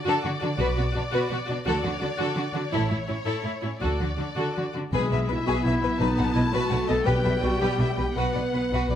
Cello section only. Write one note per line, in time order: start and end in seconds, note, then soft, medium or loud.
0.07 0.14 D3 medium
0.25 0.32 D3 soft
0.42 0.49 D3 soft
0.60 0.67 B2 medium
0.78 0.85 B2 soft
0.96 1.03 B2 soft
1.13 1.20 B2 medium
1.31 1.38 B2 soft
1.49 1.56 B2 soft
1.67 1.74 D3 medium
1.84 1.91 D3 soft
2.01 2.08 D3 soft
2.19 2.26 D3 medium
2.36 2.43 D3 soft
2.54 2.61 D3 soft
2.73 2.80 A2 medium
2.91 2.98 A2 soft
3.09 3.16 A2 soft
3.26 3.33 A2 soft
3.45 3.52 A2 soft
3.63 3.70 A2 soft
3.81 3.89 D3 soft
4.00 4.08 D3 soft
4.18 4.26 D3 soft
4.36 4.44 D3 soft
4.57 4.64 D3 soft
4.75 4.82 D3 soft
4.93 5.00 B2 soft
5.12 5.19 B2 soft
5.29 5.36 B2 soft
5.46 5.53 B2 soft
5.65 5.72 B2 soft
5.81 5.89 B2 soft
5.99 6.07 B2 medium
6.18 6.25 B2 soft
6.35 6.42 B2 soft
6.53 6.60 B2 medium
6.70 6.77 B2 soft
6.89 6.96 B2 soft
7.06 7.13 B2 medium
7.24 7.31 B2 soft
7.43 7.50 B2 soft
7.60 7.68 B2 medium
7.79 7.86 B2 soft
7.96 8.04 B2 soft
8.15 8.23 B2 soft
8.35 8.42 B2 soft
8.53 8.60 B2 soft
8.71 8.78 B2 soft
8.91 8.95 B2 soft